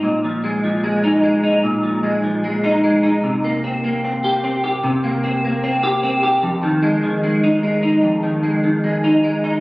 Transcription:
X:1
M:4/4
L:1/16
Q:1/4=75
K:Cm
V:1 name="Clean electric guitar" clef=bass
B,, F, A, F, A, E A, E B,, F, A, F, A, E A, E | C, B, C B, C G C G C, B, C B, C G C G | F,, E, A, E, A, E A, E F,, E, A, E, A, E A, E |]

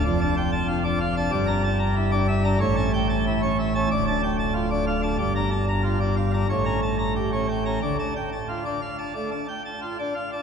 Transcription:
X:1
M:4/4
L:1/16
Q:1/4=92
K:Dm
V:1 name="Pipe organ"
[F,,d] [Da] g a F [Dd] f [Da] [G,,d] [Db] a b E [Dd] e [Db] | [A,,^c] [^Ca] g a E [Cc] e [Ca] [D,,d] [Da] g a F [Dd] f [Da] | [G,,d] [Db] a b F [Dd] f [Db] [A,,^c] [^Cb] a b G [Cc] g [Cb] | [D,d] [Da] g a F [Dd] f [Da] [A,d] [Da] g a F [Dd] f [Da] |]
V:2 name="Pipe organ" clef=bass
F,,,8 G,,,8 | A,,,8 D,,,8 | G,,,8 A,,,8 | D,, z12 z3 |]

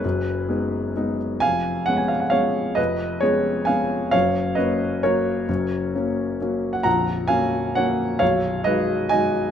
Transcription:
X:1
M:3/4
L:1/16
Q:1/4=132
K:F#
V:1 name="Grand piano"
[GB]8- [GB]2 z2 | [eg]4 f g e f [ce]4 | [Bd]4 [Gc]4 [eg]4 | [ce]4 [Bd]4 [Ac]4- |
[Ac]8- [Ac]3 f | [fa]4 [eg]4 [cf]4 | [ce]4 [Bd]4 [dg]4 |]
V:2 name="Grand piano" clef=bass
[F,,,F,,]4 [G,B,D]4 [G,B,D]4 | [E,,,E,,]4 [G,B,C]4 [G,B,C]4 | [E,,,E,,]4 [G,B,C]4 [G,B,C]4 | [F,,,F,,]4 [F,A,C]4 [F,A,C]4 |
[F,,,F,,]4 [F,A,C]4 [F,A,C]4 | [A,,,,A,,,]4 [F,A,C]4 [F,A,C]4 | [B,,,,B,,,]4 [F,G,D]4 [F,G,D]4 |]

